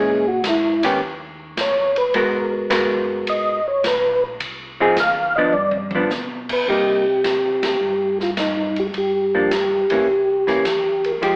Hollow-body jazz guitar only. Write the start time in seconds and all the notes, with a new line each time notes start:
Already playing: E3 G#3 C#4
0.84 D#3 B3 C#4 G4
2.15 G#3 B3 F#4 A#4
2.70 G#3 B3 F#4 A#4
4.80 F3 C4 D#4 G#4
5.38 F3 B3 D4
5.95 F3 B3 D4
6.68 G3 A#3 D#4
9.35 F3 A#3 D4
9.91 E3 A#3 C#4
10.47 E3 A#3 C#4
11.22 F3 G#3 D#4 G4